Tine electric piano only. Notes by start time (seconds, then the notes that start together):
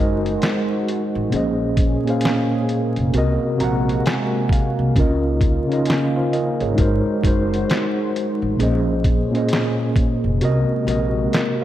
Already playing: G#3 D#4 F#4 C5 G#5
0.00 A#4 D#5
1.30 A#2 A#3 C#4 G#4
1.35 C5 D#5
2.04 A#2 A#3 C#4 G#4
2.09 C5 F5
3.12 C3 C4 F#4
3.17 A#4 D#5
3.57 C3 C4 F#4 A#5
3.62 A#4 F#5
4.06 G#5
4.52 F5
4.94 C#3 C#4 F4
4.99 A#4 D#5
5.67 C#3 C#4 F4
5.72 A#4 D#5
5.88 D#5 G#5
6.16 C5 F5
6.33 A#4 D#5
6.61 G#4 C#5
6.75 G#3 D#4 F#4
6.80 A#4 C5
7.21 G#3 D#4 F#4
7.26 A#4 C5
8.57 A#2 A#3 C#4 G#4
8.62 C5 D#5
9.31 A#2 A#3 C#4 G#4
9.36 C5 D#5
10.39 C3 C4 F#4
10.43 A#4 D#5
10.84 C3 C4 F#4
10.89 A#4 D#5
11.33 A#4 D#5